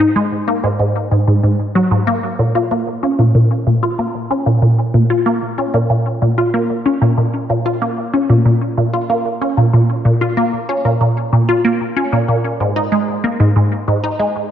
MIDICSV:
0, 0, Header, 1, 2, 480
1, 0, Start_track
1, 0, Tempo, 638298
1, 1678, Time_signature, 4, 2, 24, 8
1, 10913, End_track
2, 0, Start_track
2, 0, Title_t, "Synth arpeggio sound"
2, 0, Program_c, 0, 84
2, 119, Note_on_c, 0, 56, 79
2, 191, Note_off_c, 0, 56, 0
2, 358, Note_on_c, 0, 58, 74
2, 430, Note_off_c, 0, 58, 0
2, 479, Note_on_c, 0, 44, 78
2, 551, Note_off_c, 0, 44, 0
2, 598, Note_on_c, 0, 44, 78
2, 707, Note_off_c, 0, 44, 0
2, 839, Note_on_c, 0, 44, 72
2, 911, Note_off_c, 0, 44, 0
2, 959, Note_on_c, 0, 44, 77
2, 1031, Note_off_c, 0, 44, 0
2, 1079, Note_on_c, 0, 44, 72
2, 1151, Note_off_c, 0, 44, 0
2, 1318, Note_on_c, 0, 54, 95
2, 1390, Note_off_c, 0, 54, 0
2, 1437, Note_on_c, 0, 44, 98
2, 1510, Note_off_c, 0, 44, 0
2, 1558, Note_on_c, 0, 58, 104
2, 1666, Note_off_c, 0, 58, 0
2, 1798, Note_on_c, 0, 46, 73
2, 1870, Note_off_c, 0, 46, 0
2, 1919, Note_on_c, 0, 65, 76
2, 1991, Note_off_c, 0, 65, 0
2, 2040, Note_on_c, 0, 58, 74
2, 2111, Note_off_c, 0, 58, 0
2, 2279, Note_on_c, 0, 61, 70
2, 2351, Note_off_c, 0, 61, 0
2, 2398, Note_on_c, 0, 46, 74
2, 2470, Note_off_c, 0, 46, 0
2, 2519, Note_on_c, 0, 46, 76
2, 2627, Note_off_c, 0, 46, 0
2, 2759, Note_on_c, 0, 46, 70
2, 2831, Note_off_c, 0, 46, 0
2, 2879, Note_on_c, 0, 65, 75
2, 2951, Note_off_c, 0, 65, 0
2, 2999, Note_on_c, 0, 58, 69
2, 3071, Note_off_c, 0, 58, 0
2, 3238, Note_on_c, 0, 61, 71
2, 3310, Note_off_c, 0, 61, 0
2, 3356, Note_on_c, 0, 46, 72
2, 3429, Note_off_c, 0, 46, 0
2, 3476, Note_on_c, 0, 46, 77
2, 3586, Note_off_c, 0, 46, 0
2, 3716, Note_on_c, 0, 46, 75
2, 3789, Note_off_c, 0, 46, 0
2, 3836, Note_on_c, 0, 65, 77
2, 3909, Note_off_c, 0, 65, 0
2, 3955, Note_on_c, 0, 58, 81
2, 4029, Note_off_c, 0, 58, 0
2, 4197, Note_on_c, 0, 61, 73
2, 4270, Note_off_c, 0, 61, 0
2, 4316, Note_on_c, 0, 46, 75
2, 4389, Note_off_c, 0, 46, 0
2, 4436, Note_on_c, 0, 46, 76
2, 4546, Note_off_c, 0, 46, 0
2, 4678, Note_on_c, 0, 46, 70
2, 4750, Note_off_c, 0, 46, 0
2, 4797, Note_on_c, 0, 65, 77
2, 4870, Note_off_c, 0, 65, 0
2, 4917, Note_on_c, 0, 58, 71
2, 4990, Note_off_c, 0, 58, 0
2, 5156, Note_on_c, 0, 61, 72
2, 5229, Note_off_c, 0, 61, 0
2, 5276, Note_on_c, 0, 46, 75
2, 5349, Note_off_c, 0, 46, 0
2, 5397, Note_on_c, 0, 46, 76
2, 5506, Note_off_c, 0, 46, 0
2, 5639, Note_on_c, 0, 46, 75
2, 5711, Note_off_c, 0, 46, 0
2, 5758, Note_on_c, 0, 65, 77
2, 5830, Note_off_c, 0, 65, 0
2, 5878, Note_on_c, 0, 58, 76
2, 5950, Note_off_c, 0, 58, 0
2, 6118, Note_on_c, 0, 61, 71
2, 6190, Note_off_c, 0, 61, 0
2, 6239, Note_on_c, 0, 46, 74
2, 6311, Note_off_c, 0, 46, 0
2, 6358, Note_on_c, 0, 46, 77
2, 6466, Note_off_c, 0, 46, 0
2, 6599, Note_on_c, 0, 46, 70
2, 6671, Note_off_c, 0, 46, 0
2, 6719, Note_on_c, 0, 65, 74
2, 6791, Note_off_c, 0, 65, 0
2, 6841, Note_on_c, 0, 58, 71
2, 6912, Note_off_c, 0, 58, 0
2, 7080, Note_on_c, 0, 61, 72
2, 7151, Note_off_c, 0, 61, 0
2, 7199, Note_on_c, 0, 46, 72
2, 7271, Note_off_c, 0, 46, 0
2, 7320, Note_on_c, 0, 46, 80
2, 7428, Note_off_c, 0, 46, 0
2, 7559, Note_on_c, 0, 46, 74
2, 7631, Note_off_c, 0, 46, 0
2, 7680, Note_on_c, 0, 65, 76
2, 7751, Note_off_c, 0, 65, 0
2, 7799, Note_on_c, 0, 58, 75
2, 7871, Note_off_c, 0, 58, 0
2, 8039, Note_on_c, 0, 61, 72
2, 8111, Note_off_c, 0, 61, 0
2, 8159, Note_on_c, 0, 46, 76
2, 8231, Note_off_c, 0, 46, 0
2, 8277, Note_on_c, 0, 46, 75
2, 8386, Note_off_c, 0, 46, 0
2, 8518, Note_on_c, 0, 46, 74
2, 8590, Note_off_c, 0, 46, 0
2, 8638, Note_on_c, 0, 65, 75
2, 8710, Note_off_c, 0, 65, 0
2, 8758, Note_on_c, 0, 58, 72
2, 8830, Note_off_c, 0, 58, 0
2, 8997, Note_on_c, 0, 61, 74
2, 9070, Note_off_c, 0, 61, 0
2, 9118, Note_on_c, 0, 46, 73
2, 9190, Note_off_c, 0, 46, 0
2, 9238, Note_on_c, 0, 46, 76
2, 9346, Note_off_c, 0, 46, 0
2, 9477, Note_on_c, 0, 44, 77
2, 9550, Note_off_c, 0, 44, 0
2, 9596, Note_on_c, 0, 63, 76
2, 9669, Note_off_c, 0, 63, 0
2, 9715, Note_on_c, 0, 56, 78
2, 9789, Note_off_c, 0, 56, 0
2, 9956, Note_on_c, 0, 58, 73
2, 10029, Note_off_c, 0, 58, 0
2, 10076, Note_on_c, 0, 44, 76
2, 10150, Note_off_c, 0, 44, 0
2, 10197, Note_on_c, 0, 44, 79
2, 10306, Note_off_c, 0, 44, 0
2, 10436, Note_on_c, 0, 44, 77
2, 10509, Note_off_c, 0, 44, 0
2, 10555, Note_on_c, 0, 63, 77
2, 10629, Note_off_c, 0, 63, 0
2, 10675, Note_on_c, 0, 56, 73
2, 10749, Note_off_c, 0, 56, 0
2, 10913, End_track
0, 0, End_of_file